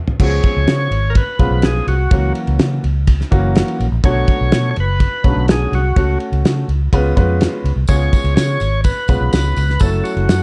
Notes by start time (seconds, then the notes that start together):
0.08 floor tom
0.20 C#2 F3 G#3 B3 C#4 F#4 C#5, kick, crash
0.26 G#4
0.43 kick, ride
0.56 C#2
0.68 C#3, snare, ride
0.91 G#1, ride
1.10 A#4
1.15 B4, kick, ride
1.39 B1 F3 G#3 B3 C#4 F4, kick, ride
1.51 B1
1.62 G#4, snare, ride
1.87 C2 F#4, ride
2.11 C#2 E3 F#3 A#3 C#4 F#4, kick, ride
2.35 ride
2.47 C#2, ride
2.59 C#3, snare, ride
2.84 C#2, ride
3.07 kick, ride
3.21 snare
3.31 F#1 E3 F#3 A#3 C#4 F#4, kick, ride
3.55 snare, ride
3.68 ride
3.80 A#1, ride
3.92 A#1
4.04 B1 D3 F#3 A3 B3 F#4 C#5, kick, ride
4.28 kick, ride
4.41 B1
4.52 B2, snare, ride
4.71 C#5
4.76 F#1 B4, ride
5.00 kick, ride
5.24 B1 C#3 F#3 A3 B3 C#4, kick, ride
5.30 D3
5.36 B1
5.48 G#4, snare, ride
5.72 C2 F#4, ride
5.96 C#2 A3 C#4 F#4, kick, ride
6.20 ride
6.32 C#2, ride
6.44 C#3, snare, ride
6.68 C#2, ride
6.93 C#2 G#3 B3 C#4 F4 B4, kick, ride
7.17 F2 G#3 B3 C#4 F4 B4, kick, ride
7.41 snare, ride
7.64 C#2, ride
7.76 C2
7.88 C#2 G#3 B3 C#4 F4 G#4 C#5, kick, ride, tambourine
8.13 kick, ride, tambourine
8.24 C#2, ride
8.36 C#3 C#5, snare, ride, tambourine
8.60 G#1, ride, tambourine
8.84 B4, kick, ride, tambourine
9.08 B1 G#3 B3 C#4 F4 B4, kick, ride, tambourine
9.21 B1
9.33 C#2 B4, snare, ride, tambourine
9.56 C#2, ride, tambourine
9.70 snare
9.80 F#1 F#3 A3 C#4 E4 A4, kick, ride, tambourine
10.04 F#4, ride, tambourine
10.16 F#1, ride
10.29 F#2, snare, ride, tambourine